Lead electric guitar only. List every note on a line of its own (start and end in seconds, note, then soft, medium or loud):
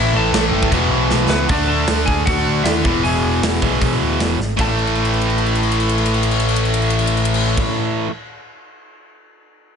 0.00 0.14 E4 medium
0.00 0.15 E5 loud
0.16 0.69 A4 medium
0.16 0.69 A5 medium
1.30 1.49 B3 medium
1.30 1.48 B4 loud
1.50 1.68 D4 medium
1.50 1.69 D5 medium
1.68 2.05 A4 medium
1.68 2.08 A5 medium
2.06 2.26 G#4 medium
2.06 2.24 G#5 loud
2.26 2.63 F#4 medium
2.26 2.66 F#5 loud
2.64 3.02 E4 medium
2.64 3.04 E5 medium
3.04 4.17 G#4 medium
3.04 4.15 G#5 medium
4.61 7.63 A5 medium